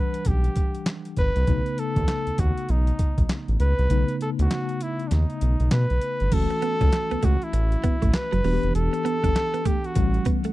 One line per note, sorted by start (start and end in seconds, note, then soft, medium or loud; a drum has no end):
0.00 1.43 E3 medium
0.00 1.43 G3 medium
0.00 1.43 D4 medium
0.00 0.29 B4 loud
0.00 1.44 F#5 medium
0.14 closed hi-hat soft
0.25 0.49 B1 medium
0.25 0.88 G4 medium
0.25 kick loud
0.25 closed hi-hat medium
0.44 closed hi-hat soft
0.56 kick medium
0.56 closed hi-hat medium
0.75 closed hi-hat medium
0.86 snare loud
0.86 clap loud
0.86 closed hi-hat medium
1.05 closed hi-hat soft
1.17 1.31 G1 medium
1.17 1.81 B4 loud
1.17 kick loud
1.17 closed hi-hat medium
1.36 1.45 C2 medium
1.36 closed hi-hat soft
1.47 1.62 B1 medium
1.47 3.86 C#3 medium
1.47 3.86 A3 medium
1.47 3.86 B3 medium
1.47 3.87 D#4 medium
1.47 kick loud
1.47 closed hi-hat medium
1.66 closed hi-hat soft
1.78 2.41 A4 loud
1.78 closed hi-hat medium
1.96 2.05 D#2 medium
1.96 kick loud
1.96 closed hi-hat soft
2.08 snare loud
2.08 clap medium
2.08 closed hi-hat medium
2.27 2.32 D#2 soft
2.27 closed hi-hat medium
2.38 2.53 D#2 medium
2.38 2.72 F#4 medium
2.38 kick medium
2.38 closed hi-hat medium
2.58 closed hi-hat soft
2.69 2.92 B1 loud
2.69 3.30 D#4 medium
2.69 closed hi-hat medium
2.87 closed hi-hat soft
2.99 kick medium
2.99 closed hi-hat medium
3.18 3.27 B1 medium
3.18 kick medium
3.18 closed hi-hat medium
3.29 snare loud
3.29 clap medium
3.29 closed hi-hat medium
3.48 3.57 A1 medium
3.48 closed hi-hat soft
3.60 3.74 C#2 loud
3.60 4.17 B4 loud
3.60 closed hi-hat medium
3.79 3.87 C2 medium
3.79 closed hi-hat soft
3.89 4.04 B1 loud
3.89 6.28 C#3 medium
3.89 6.28 A3 medium
3.89 6.29 B3 medium
3.89 6.29 D#4 medium
3.89 closed hi-hat medium
4.08 closed hi-hat soft
4.21 4.30 A4 medium
4.21 closed hi-hat medium
4.39 4.48 D2 loud
4.39 4.84 F#4 medium
4.39 closed hi-hat soft
4.51 snare loud
4.51 clap medium
4.51 closed hi-hat medium
4.69 closed hi-hat medium
4.81 5.09 E4 medium
4.81 closed hi-hat medium
4.99 closed hi-hat soft
5.08 5.25 D#2 medium
5.08 5.14 D4 medium
5.08 snare medium
5.08 closed hi-hat medium
5.13 5.72 D#4 medium
5.30 closed hi-hat soft
5.41 5.56 B1 medium
5.41 closed hi-hat medium
5.60 5.69 B1 medium
5.60 closed hi-hat medium
5.71 5.86 B2 loud
5.71 6.35 B4 loud
5.71 snare loud
5.71 clap medium
5.71 closed hi-hat medium
5.90 5.99 B1 medium
5.90 closed hi-hat soft
6.01 closed hi-hat medium
6.20 6.30 G1 medium
6.20 closed hi-hat soft
6.31 6.46 F#1 loud
6.31 8.40 E3 medium
6.31 8.40 A3 medium
6.31 8.41 C#4 medium
6.31 8.41 F#4 medium
6.31 7.26 A4 loud
6.31 kick medium
6.31 closed hi-hat medium
6.31 crash medium
6.50 muted clean electric guitar stroke soft
6.50 closed hi-hat soft
6.62 6.74 B3 medium
6.62 closed hi-hat medium
6.81 6.90 C#2 loud
6.81 6.88 C#4 medium
6.81 kick loud
6.81 closed hi-hat medium
6.92 muted clean electric guitar stroke soft
6.92 snare loud
6.92 clap medium
6.92 closed hi-hat medium
7.11 7.16 C#2 soft
7.11 7.19 B3 medium
7.11 closed hi-hat medium
7.23 7.37 C#2 medium
7.23 7.35 A3 medium
7.23 7.45 F#4 loud
7.23 kick medium
7.23 closed hi-hat medium
7.42 8.17 E4 loud
7.42 closed hi-hat soft
7.53 7.76 A1 loud
7.53 muted clean electric guitar stroke soft
7.53 closed hi-hat medium
7.72 closed hi-hat soft
7.84 7.95 B3 medium
7.84 kick loud
7.84 closed hi-hat medium
8.02 8.11 A1 medium
8.02 8.09 A3 medium
8.02 kick medium
8.02 closed hi-hat medium
8.13 8.75 B4 loud
8.13 muted clean electric guitar stroke soft
8.13 snare loud
8.13 clap loud
8.13 closed hi-hat medium
8.32 8.42 F#1 medium
8.32 8.40 F#3 medium
8.32 closed hi-hat soft
8.44 8.59 E1 loud
8.44 9.92 E3 medium
8.44 8.56 G3 medium
8.44 9.93 B3 medium
8.44 9.93 D4 medium
8.44 8.53 F#4 medium
8.44 open hi-hat medium
8.53 9.97 G4 medium
8.63 8.72 F1 medium
8.63 closed hi-hat soft
8.75 8.89 E1 loud
8.75 9.68 A4 loud
8.75 closed hi-hat medium
8.93 muted clean electric guitar stroke soft
8.93 closed hi-hat soft
9.05 9.17 B3 medium
9.05 closed hi-hat medium
9.24 9.33 G1 loud
9.24 9.31 D4 medium
9.24 kick loud
9.24 closed hi-hat medium
9.35 muted clean electric guitar stroke soft
9.35 snare loud
9.35 clap medium
9.35 closed hi-hat medium
9.54 9.61 B3 medium
9.54 closed hi-hat medium
9.65 9.77 A3 medium
9.65 9.87 G4 loud
9.65 kick medium
9.65 closed hi-hat medium
9.84 10.31 F#4 loud
9.84 closed hi-hat soft
9.95 10.19 A1 loud
9.95 10.53 E3 medium
9.95 10.53 G3 medium
9.95 10.53 A3 medium
9.95 10.53 C#4 medium
9.95 muted clean electric guitar stroke soft
9.95 kick loud
9.95 closed hi-hat medium
10.14 closed hi-hat soft
10.25 10.38 B3 medium
10.25 kick loud
10.25 closed hi-hat medium
10.44 10.52 A3 medium
10.44 closed hi-hat medium